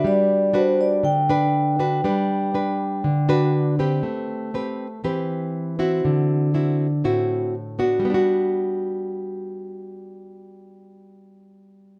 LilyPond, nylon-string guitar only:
\new Staff \with { instrumentName = "Nylon-string guitar" } { \time 4/4 \key g \major \tempo 4 = 120 << { <d' fis' b'>4 <d' fis' b'>4 r8 <d' b'>4 <d' fis' b'>8 | <d' b'>4 <d' b'>4 r8 <d' fis' b'>4 <c' g' b'>8~ | <c' g' b'>4 <c' g' b'>8 r8 <c' g' b'>4. <c' e' fis'>8~ | <c' e' fis'>4 <c' e' fis'>8 r8 <c' e' fis'>4 r8 <b d' fis'>8~ |
<b d' fis'>4 r2. | r1 | } \\ { g2 d2 | g2 d2 | a2 e2 | d2 a,2 |
<g b d' fis'>1~ | <g b d' fis'>1 | } >> }